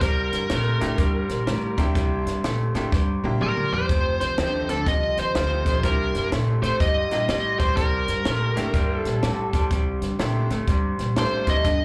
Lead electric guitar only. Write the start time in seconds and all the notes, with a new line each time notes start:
0.02 A#4
3.42 A#4
3.74 C5
4.21 C5
4.70 A4
4.87 D#5
5.19 C5
5.85 A#4
6.63 C5
6.81 D#5
7.59 C5
7.77 A#4
8.98 A4
11.18 C5
11.49 D#5